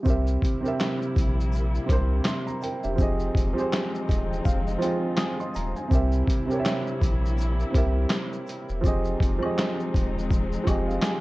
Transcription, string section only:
0.05 2.95 C3 medium
0.05 2.95 G3 medium
0.05 2.95 A#3 medium
0.05 2.95 E4 medium
2.99 5.88 F3 medium
2.99 5.88 G#3 medium
2.99 5.88 C4 medium
2.99 5.88 D#4 medium
5.91 8.81 C3 medium
5.91 8.81 G3 medium
5.91 8.81 A#3 medium
5.91 8.81 E4 medium
8.84 11.21 F3 medium
8.84 11.21 G#3 medium
8.84 11.21 C4 medium
8.84 11.21 D#4 medium

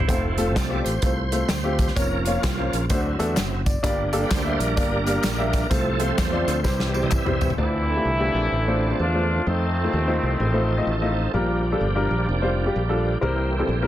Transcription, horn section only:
7.58 8.95 E3 medium
7.58 8.95 A3 medium
7.58 8.95 C4 medium
7.58 8.95 E4 loud
8.99 9.43 F3 medium
8.99 9.43 A3 medium
8.99 9.46 D4 medium
8.99 9.43 F4 medium
9.47 11.13 D#3 medium
9.47 11.13 A3 medium
9.47 11.17 C4 medium

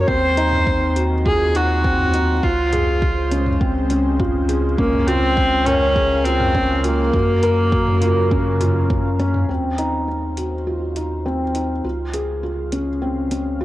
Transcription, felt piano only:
0.00 0.10 C#4 medium
0.00 0.10 A#4 medium
0.08 0.36 C4 medium
0.37 0.65 D#4 medium
0.67 0.95 C4 medium
0.96 1.13 F#4 medium
1.26 1.53 F4 medium
1.55 1.83 D#4 medium
1.85 2.01 C4 medium
2.14 2.31 D#4 medium
2.43 2.71 F4 medium
2.73 3.01 G#4 medium
3.02 3.30 F4 medium
3.31 3.48 C#4 medium
3.61 3.89 C4 medium
3.90 4.18 C#4 medium
4.20 4.48 F4 medium
4.49 4.66 G#4 medium
4.79 5.06 C#4 medium
5.08 5.36 F4 loud
5.37 5.65 C#4 medium
5.67 5.83 A#4 medium
5.96 6.24 G#4 medium
6.25 6.53 F4 medium
6.55 6.72 C#4 medium
6.84 7.01 F4 medium
7.14 7.42 F#4 medium
7.43 7.71 A#4 loud
7.73 8.01 F#4 medium
8.02 8.19 F4 medium
8.31 8.59 C#4 medium
8.61 8.89 F4 medium
8.90 9.18 C#4 medium
9.19 9.47 C#4 loud
9.49 9.77 C4 medium
9.78 10.06 D#4 medium
10.08 10.36 C4 medium
10.37 10.54 F#4 medium
10.67 10.95 F4 medium
10.96 11.24 D#4 medium
11.26 11.42 C4 medium
11.55 11.72 D#4 medium
11.84 12.12 F4 medium
12.14 12.42 G#4 medium
12.43 12.71 F4 medium
12.72 12.89 C#4 medium
13.02 13.30 C4 medium
13.31 13.59 C#4 medium
13.61 13.65 F4 medium

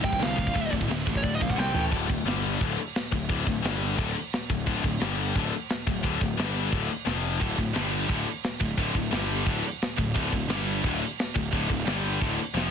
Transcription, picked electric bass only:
0.04 0.17 D1 medium
0.18 0.46 C2 loud
0.55 0.69 D1 loud
0.73 0.86 D1 medium
0.88 1.02 D1 loud
1.07 1.20 A1 loud
1.23 1.37 D1 loud
1.42 1.55 B1 loud
1.56 1.70 C2 medium
1.73 1.87 A1 loud
1.92 2.08 D1 medium
2.09 2.23 D1 medium
2.24 2.57 G1 loud
2.61 2.77 D1 loud
3.13 3.28 D1 medium
3.30 3.46 D1 medium
3.47 3.62 D1 medium
3.63 3.95 G1 loud
3.99 4.14 D1 loud
4.50 4.66 D1 medium
4.67 4.83 D1 medium
4.84 5.00 D1 medium
5.01 5.33 G1 loud
5.35 5.51 D1 loud
5.87 6.03 D1 medium
6.04 6.20 D1 medium
6.21 6.37 D1 medium
6.39 6.70 G1 loud
6.72 6.88 D1 loud
7.07 7.38 F1 loud
7.41 7.57 D1 loud
7.58 7.74 D1 medium
7.76 8.07 G1 loud
8.09 8.25 D1 loud
8.61 8.77 D1 medium
8.77 8.94 D1 medium
8.95 9.11 D1 medium
9.12 9.44 G1 loud
9.46 9.62 D1 loud
9.99 10.14 D1 medium
10.16 10.32 D1 medium
10.33 10.48 D1 medium
10.49 10.81 G1 loud
10.84 11.00 D1 loud
11.36 11.52 D1 medium
11.53 11.69 D1 medium
11.70 11.85 D1 medium
11.86 12.18 G1 loud
12.21 12.37 D1 loud
12.54 12.71 F1 loud

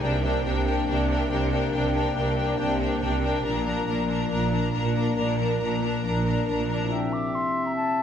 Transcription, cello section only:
0.04 0.41 C3 medium
0.46 0.83 C3 soft
0.89 1.27 C3 medium
1.31 1.69 C3 medium
1.74 2.12 C3 medium
2.16 2.54 C3 soft
2.59 2.97 C3 soft
3.02 3.40 C3 soft
3.45 3.83 A#2 soft
3.88 4.26 A#2 soft
4.31 4.69 A#2 soft
4.74 5.12 A#2 soft
5.19 5.56 A#2 soft
5.62 6.00 A#2 soft
6.05 6.43 A#2 soft
6.49 6.87 A#2 soft

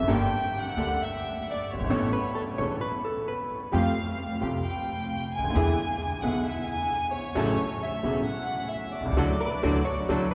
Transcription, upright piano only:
0.03 0.09 F#2 medium
0.07 0.28 G1 medium
0.07 0.28 G2 medium
0.07 0.27 G3 medium
0.07 0.27 A#3 medium
0.07 0.28 D4 medium
0.07 0.28 A4 medium
0.77 0.96 D2 medium
0.77 0.96 D3 soft
0.77 0.96 G3 soft
0.77 0.96 A#3 soft
0.77 0.96 D4 soft
0.77 0.97 A4 soft
1.73 1.79 F#1 soft
1.79 1.85 G1 medium
1.84 1.90 G#1 medium
1.90 2.09 A1 medium
1.90 2.09 A2 medium
1.90 2.09 E3 medium
1.90 2.09 B3 medium
1.90 2.09 C#4 medium
1.90 2.10 A4 medium
2.59 2.78 E1 soft
2.59 2.78 E2 soft
2.59 2.78 E3 soft
2.59 2.78 B3 soft
2.59 2.78 C#4 soft
2.59 2.78 A4 soft
3.72 3.92 F2 medium
3.72 3.92 F3 medium
3.72 3.92 A3 medium
3.72 3.92 C4 medium
3.72 3.92 G4 medium
4.41 4.60 C2 soft
4.41 4.61 C3 soft
4.41 4.60 F3 soft
4.41 4.60 A3 soft
4.41 4.61 C4 soft
4.41 4.61 G4 soft
5.39 5.44 C#2 soft
5.44 5.49 D2 soft
5.50 5.55 D#2 medium
5.56 5.74 E2 medium
5.56 5.74 D3 medium
5.56 5.74 E3 medium
5.56 5.74 G#3 medium
5.56 5.74 B3 medium
5.56 5.75 E4 medium
6.23 6.42 B1 medium
6.23 6.42 B2 medium
6.23 6.42 D3 soft
6.23 6.42 G#3 soft
6.23 6.42 B3 soft
6.23 6.42 E4 soft
7.35 7.55 A1 medium
7.35 7.55 A2 medium
7.35 7.55 C#3 medium
7.35 7.55 F#3 medium
7.35 7.55 A3 medium
7.35 7.55 E4 medium
8.03 8.23 E1 medium
8.03 8.23 E2 medium
8.03 8.23 C#3 soft
8.03 8.23 F#3 soft
8.03 8.23 A3 soft
8.03 8.23 E4 soft
9.01 9.06 B1 soft
9.06 9.12 C2 medium
9.11 9.17 C#2 medium
9.17 9.32 A2 medium
9.17 9.32 D3 medium
9.17 9.32 F#3 medium
9.63 9.78 A2 medium
9.63 9.78 D3 medium
9.63 9.78 F#3 medium
10.09 10.24 A2 medium
10.09 10.24 D3 medium
10.09 10.24 F#3 medium

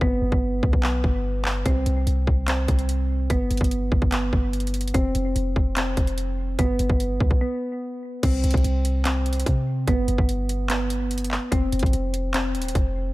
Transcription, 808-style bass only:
0.01 0.21 G1 loud
0.22 0.32 G1 loud
0.32 0.62 G1 loud
0.63 0.72 D2 loud
0.73 1.03 B1 loud
1.04 1.63 G1 loud
1.66 1.85 C2 loud
1.86 2.06 C2 loud
2.07 2.26 C2 loud
2.27 2.67 C2 loud
2.68 3.28 C2 loud
3.30 3.50 G1 loud
3.51 3.60 G1 loud
3.61 3.90 G1 loud
3.92 4.01 G1 loud
4.02 4.31 G1 loud
4.33 4.92 G1 loud
4.94 5.14 F1 loud
5.15 5.35 F1 loud
5.36 5.55 F1 loud
5.56 5.96 F1 loud
5.97 6.56 F1 loud
6.59 6.78 G1 loud
6.79 6.89 G1 loud
6.90 7.19 G1 loud
7.20 7.30 D2 loud
7.31 7.40 B1 loud
8.23 8.43 C2 loud
8.44 8.53 C2 loud
8.54 8.64 C2 loud
8.64 9.43 C2 loud
9.46 9.86 C3 loud
9.87 10.07 G1 loud
10.08 10.18 G1 loud
10.18 11.38 G1 loud
11.52 11.72 F1 loud
11.72 11.82 F1 loud
11.83 11.93 G#1 loud
11.93 12.56 F1 loud
12.55 12.74 D#1 loud
12.75 13.13 F1 loud

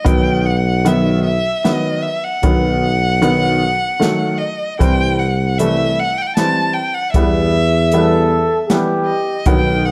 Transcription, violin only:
0.07 0.47 G5 medium
0.46 0.88 F#5 medium
0.87 1.24 E5 medium
1.24 1.65 E5 medium
1.63 2.03 D#5 medium
2.02 2.25 E5 medium
2.24 4.40 F#5 medium
4.38 4.78 D#5 medium
4.81 5.21 G5 loud
5.19 5.60 F#5 medium
5.58 6.01 E5 medium
6.00 6.19 F#5 medium
6.18 6.28 F#5 medium
6.18 6.23 G5 medium
6.27 6.36 G5 medium
6.37 6.75 A5 medium
6.74 6.96 G5 medium
6.95 7.12 F#5 medium
7.13 8.64 E5 loud
9.06 9.47 D#5 medium
9.46 9.87 G5 medium
9.86 9.91 F#5 medium

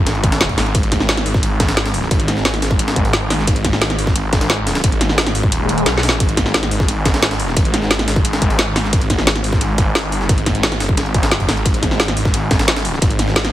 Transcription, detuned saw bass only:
0.07 0.56 G#1 loud
0.58 0.73 G#1 loud
0.75 1.25 G#1 medium
1.26 1.59 G#1 loud
1.60 2.10 G#1 loud
2.11 2.61 G#1 medium
2.62 2.95 G#1 loud
2.96 3.46 G#1 loud
3.47 3.97 G#1 loud
3.99 4.31 G#1 loud
4.33 4.82 G#1 loud
4.84 5.34 G#1 loud
5.35 5.51 G#1 loud
5.52 5.85 D#1 loud
5.86 6.19 B1 medium
6.20 6.70 G#1 loud
6.71 7.04 G#1 loud
7.05 7.55 G#1 loud
7.57 8.06 G#1 loud
8.08 8.40 G#1 loud
8.42 8.92 G#1 loud
8.93 9.43 G#1 loud
9.44 9.77 G#1 loud
9.78 10.28 G#1 loud
10.29 10.79 G#1 loud
10.80 10.96 F#1 loud
10.97 11.47 G#1 loud
11.49 11.64 G#1 loud
11.66 12.15 G#1 medium
12.17 12.50 G#1 loud
12.51 13.01 G#1 loud
13.02 13.52 G#1 loud

